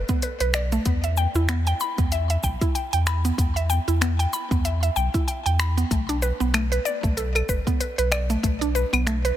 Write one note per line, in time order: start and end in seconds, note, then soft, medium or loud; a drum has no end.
0.09 0.21 B3 medium
0.09 kick loud
0.09 closed hi-hat soft
0.09 shaker soft
0.22 0.39 B4 medium
0.22 closed hi-hat medium
0.22 shaker soft
0.40 0.79 B1 medium
0.40 0.53 B4 loud
0.40 closed hi-hat soft
0.40 shaker soft
0.54 0.71 D5 loud
0.54 finger snap medium
0.54 shaker medium
0.72 0.84 A3 medium
0.72 closed hi-hat soft
0.72 shaker soft
0.85 1.27 E2 loud
0.85 1.03 B3 medium
0.85 kick loud
0.85 closed hi-hat medium
0.85 shaker soft
1.04 1.17 E5 medium
1.04 closed hi-hat soft
1.04 shaker soft
1.17 1.28 G5 loud
1.17 shaker medium
1.34 1.73 E2 loud
1.34 1.48 E4 medium
1.34 shaker soft
1.49 1.59 B3 loud
1.49 finger snap medium
1.49 closed hi-hat medium
1.49 shaker soft
1.67 1.80 G5 loud
1.67 closed hi-hat soft
1.67 shaker soft
1.80 1.98 B5 loud
1.80 shaker medium
1.98 2.37 E2 medium
1.98 2.11 B3 medium
1.98 kick loud
1.98 closed hi-hat soft
1.98 shaker soft
2.12 2.29 E5 medium
2.12 closed hi-hat medium
2.12 shaker soft
2.30 2.43 E5 medium
2.30 closed hi-hat soft
2.30 shaker soft
2.43 2.56 B1 medium
2.43 2.54 G5 loud
2.43 kick medium
2.43 shaker medium
2.61 2.74 E4 medium
2.61 kick loud
2.61 closed hi-hat soft
2.61 shaker soft
2.75 2.92 G5 medium
2.75 closed hi-hat medium
2.75 shaker soft
2.93 3.32 E2 medium
2.93 3.06 G5 loud
2.93 closed hi-hat soft
2.93 shaker soft
3.07 3.24 B5 loud
3.07 finger snap medium
3.07 shaker medium
3.25 3.37 B3 medium
3.25 closed hi-hat soft
3.25 shaker soft
3.38 3.79 E2 medium
3.38 3.55 B3 medium
3.38 kick loud
3.38 closed hi-hat medium
3.38 shaker soft
3.56 3.69 E5 medium
3.56 closed hi-hat soft
3.56 shaker soft
3.70 3.80 G5 loud
3.70 shaker medium
3.88 4.26 E2 loud
3.88 4.00 E4 medium
3.88 closed hi-hat soft
3.88 shaker soft
4.01 4.12 B3 medium
4.01 finger snap medium
4.01 closed hi-hat medium
4.01 shaker soft
4.19 4.32 G5 loud
4.19 closed hi-hat soft
4.19 shaker soft
4.33 4.50 B5 loud
4.33 shaker medium
4.51 4.90 E2 loud
4.51 4.63 B3 medium
4.51 kick loud
4.51 closed hi-hat soft
4.51 shaker soft
4.65 4.81 E5 medium
4.65 closed hi-hat medium
4.65 shaker soft
4.83 4.96 E5 medium
4.83 closed hi-hat soft
4.83 shaker soft
4.96 5.09 B1 medium
4.96 5.06 G5 loud
4.96 shaker medium
5.14 5.26 E4 medium
5.14 kick loud
5.14 closed hi-hat soft
5.14 shaker soft
5.28 5.45 G5 medium
5.28 closed hi-hat medium
5.28 shaker soft
5.46 5.84 E2 medium
5.46 5.59 G5 medium
5.46 closed hi-hat soft
5.46 shaker soft
5.59 5.76 B5 loud
5.59 finger snap medium
5.59 shaker medium
5.77 5.90 B3 medium
5.77 closed hi-hat soft
5.77 shaker soft
5.91 6.32 B1 medium
5.91 6.08 A3 medium
5.91 kick loud
5.91 closed hi-hat medium
5.91 shaker soft
6.09 6.17 D4 loud
6.09 closed hi-hat soft
6.09 shaker soft
6.22 6.33 B4 loud
6.22 shaker medium
6.40 6.79 B1 loud
6.40 6.53 B3 medium
6.40 shaker soft
6.54 6.64 A3 loud
6.54 finger snap medium
6.54 closed hi-hat medium
6.54 claves medium
6.54 shaker soft
6.72 6.85 B4 loud
6.72 closed hi-hat soft
6.72 shaker soft
6.85 7.03 D5 loud
6.85 shaker medium
7.03 7.42 B1 loud
7.03 7.16 A3 medium
7.03 kick loud
7.03 closed hi-hat soft
7.03 shaker soft
7.17 7.34 A4 medium
7.17 closed hi-hat medium
7.17 shaker soft
7.35 7.48 A4 medium
7.35 closed hi-hat soft
7.35 claves medium
7.35 shaker soft
7.49 7.61 F#1 medium
7.49 7.59 B4 loud
7.49 kick medium
7.49 shaker medium
7.67 7.79 B3 medium
7.67 kick loud
7.67 closed hi-hat soft
7.67 shaker soft
7.80 7.97 B4 medium
7.80 closed hi-hat medium
7.80 shaker soft
7.98 8.37 B1 medium
7.98 8.11 B4 loud
7.98 closed hi-hat soft
7.98 shaker soft
8.12 8.29 D5 loud
8.12 finger snap medium
8.12 claves medium
8.12 shaker medium
8.30 8.42 A3 medium
8.30 closed hi-hat soft
8.30 shaker soft
8.43 8.85 B1 loud
8.43 8.60 A3 medium
8.43 kick loud
8.43 closed hi-hat medium
8.43 shaker soft
8.61 8.69 D4 loud
8.61 closed hi-hat soft
8.61 shaker soft
8.75 8.85 B4 loud
8.75 shaker medium
8.93 9.32 B1 loud
8.93 9.05 B3 medium
8.93 closed hi-hat soft
8.93 claves medium
8.93 shaker soft
9.07 9.17 A3 loud
9.07 finger snap medium
9.07 closed hi-hat medium
9.07 shaker soft
9.25 9.37 B4 loud
9.25 closed hi-hat soft
9.25 shaker soft